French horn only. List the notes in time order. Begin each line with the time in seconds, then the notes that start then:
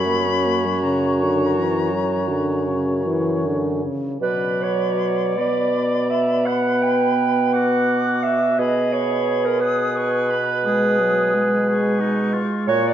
0.07 A#3
0.27 C#4
0.46 A#3
0.65 F#3
0.83 C#3
1.21 D3
1.57 E3
1.91 F#3
2.29 D3
2.68 C#3
3.06 E3
3.46 D3
3.83 C#3
4.22 F#3
5.37 B3
10.65 G#3
11.00 F#3
11.35 G#3
12.70 A#3